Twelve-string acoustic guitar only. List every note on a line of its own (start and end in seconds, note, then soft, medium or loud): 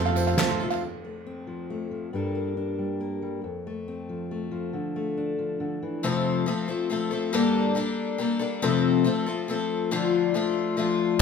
0.00 0.36 F3 medium
0.00 0.38 A3 medium
0.00 0.38 C4 medium
0.00 0.39 A4 medium
0.38 0.59 F3 medium
0.38 0.60 A3 medium
0.38 0.60 C4 medium
0.38 0.59 A4 medium
0.60 0.83 F3 soft
0.60 0.82 A3 soft
0.60 0.82 C4 soft
0.60 0.81 A4 soft
6.03 6.47 F2 medium
6.03 6.47 C3 medium
6.03 6.45 F3 medium
6.03 6.47 A3 medium
6.03 6.47 C4 medium
6.03 6.48 A4 medium
6.46 6.68 F3 medium
6.46 6.69 A3 medium
6.46 6.68 C4 medium
6.46 6.67 A4 medium
6.68 6.89 F3 soft
6.68 6.90 A3 soft
6.68 6.90 C4 medium
6.68 6.90 A4 medium
6.90 7.11 F3 medium
6.90 7.11 A3 medium
6.90 7.11 C4 medium
6.90 7.10 A4 medium
7.11 7.33 F3 soft
7.11 7.34 A3 soft
7.11 7.33 C4 medium
7.11 7.33 A4 medium
7.33 7.76 G2 medium
7.33 7.76 D3 medium
7.33 7.74 G3 loud
7.33 7.75 A#3 medium
7.33 7.76 D4 loud
7.33 7.77 A4 loud
7.75 8.17 G3 medium
7.75 8.18 A#3 medium
7.75 8.19 D4 medium
7.75 8.21 A4 medium
8.18 8.40 G3 medium
8.18 8.40 A#3 medium
8.18 8.39 D4 medium
8.18 8.38 A4 medium
8.39 8.62 G3 medium
8.39 8.63 A#3 medium
8.39 8.62 D4 medium
8.39 8.62 A4 medium
8.62 9.05 F2 medium
8.62 9.05 C3 loud
8.62 9.04 F3 medium
8.62 9.05 A3 medium
8.62 9.05 C4 medium
8.62 9.07 A4 medium
9.04 9.26 F3 medium
9.04 9.27 A3 medium
9.04 9.27 C4 medium
9.04 9.25 A4 medium
9.26 9.47 F3 soft
9.26 9.48 A3 medium
9.26 9.49 C4 medium
9.26 9.48 A4 medium
9.48 9.91 F3 medium
9.48 9.92 A3 medium
9.48 9.92 C4 medium
9.48 9.93 A4 medium
9.91 10.34 D3 loud
9.91 10.34 F3 medium
9.91 10.35 A3 medium
9.91 10.35 D4 medium
9.91 10.36 F4 loud
10.34 10.76 F3 medium
10.34 10.77 A3 medium
10.34 10.77 D4 medium
10.34 10.78 F4 medium
10.77 11.20 F3 medium
10.77 11.21 A3 medium
10.77 11.21 D4 medium
10.77 11.21 F4 medium